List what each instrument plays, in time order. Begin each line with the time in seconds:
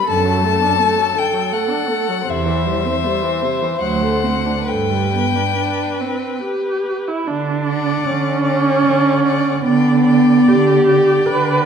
0.07 cello F#2, viola D3, violin A4 A5
0.25 viola F#3
0.44 viola A3
0.62 viola D4
0.80 viola A3
0.98 viola F#3
1.16 viola D3, violin G5
1.33 viola F#3
1.52 viola A3, violin F#5
1.69 viola D4
1.89 viola A3
2.08 viola F#3
2.27 cello E2, viola C3, violin C5 E5
2.46 viola E3
2.66 viola G3
2.85 viola C4
3.04 viola G3
3.23 viola E3
3.42 viola C3
3.62 viola E3
3.81 cello D2, viola F#3, violin F#5
4.02 viola A3
4.23 viola C4
4.46 viola D4
4.68 cello G2, viola D3, violin B4 G5
4.91 viola G3
5.13 viola B3
5.36 viola D4
5.57 viola D4
6.01 viola C4
6.43 viola G4
7.08 viola E4
7.27 cello D3, viola D4
7.68 violin D5 F#5
8.06 cello D3, viola C#4
8.45 violin D5 F#5
8.86 cello D3
9.23 violin D5 F#5
9.64 cello D3, viola B3, violin D5 G5
10.05 violin D5 G5
10.48 cello D3, viola G4
10.89 violin D5 G5
11.26 cello D3, viola B4